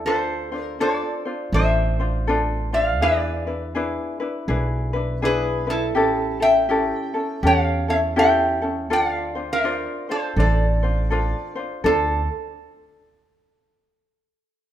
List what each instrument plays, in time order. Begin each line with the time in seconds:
0.05 upright bass D2, ukulele D4 F4 A4 C5, resonator guitar played with a steel bar A4 C5
0.52 ukulele D4 F4 C5
0.62 resonator guitar played with a steel bar A#4
0.80 ukulele D4 F4 A4 C5, resonator guitar played with a steel bar A4 D5
1.25 ukulele D4 F4 C5
1.52 upright bass A1, ukulele D4 F4 A4 C5, resonator guitar played with a steel bar C5 E5
2.00 ukulele D4 F4 C5
2.27 ukulele D4 F4 A4 C5
2.73 ukulele D4 F4 C5, resonator guitar played with a steel bar D5 F5
3.01 upright bass E2, ukulele D4 E4 G#4 B4, resonator guitar played with a steel bar B4 D5
3.47 ukulele D4 E4 B4
3.75 ukulele D4 E4 G#4 B4
4.20 ukulele D4 E4 B4
4.48 upright bass B1, ukulele D4 E4 G#4 B4
4.93 ukulele D4 E4 B4
5.22 ukulele D4 E4 G#4 B4, resonator guitar played with a steel bar G#4 B4
5.67 ukulele D4 E4 B4, resonator guitar played with a steel bar E4 A4
5.95 upright bass A1, ukulele C#4 E4 G4 A4
6.40 ukulele C#4 E4 A4, resonator guitar played with a steel bar E5 G5
6.69 ukulele C#4 E4 G4 A4
7.14 ukulele C#4 E4 A4
7.43 upright bass E2, ukulele C#4 G4 A4, resonator guitar played with a steel bar F5
7.47 resonator guitar played with a steel bar C#5
7.88 ukulele C#4 E4 A4, resonator guitar played with a steel bar C#5 E5
8.16 ukulele C#4 E4 G4 A4, resonator guitar played with a steel bar E5 G5
8.62 ukulele C#4 E4 A4
8.90 upright bass D2, ukulele D4 F4 A4 C5, resonator guitar played with a steel bar D5 F#5
9.10 resonator guitar played with a steel bar F5
9.35 ukulele D4 F4 C5
9.53 resonator guitar played with a steel bar A#4 D5
9.64 ukulele D4 F4 C5
10.09 ukulele D4 F4 C5, resonator guitar played with a steel bar A4 C5
10.36 upright bass A1, ukulele D4 F4 A4 C5, resonator guitar played with a steel bar A4 D5
10.83 ukulele D4 F4 C5
11.10 ukulele D4 F4 A4 C5
11.56 ukulele D4 F4 C5
11.84 upright bass D2, ukulele D4 F4 A4 C5, resonator guitar played with a steel bar A4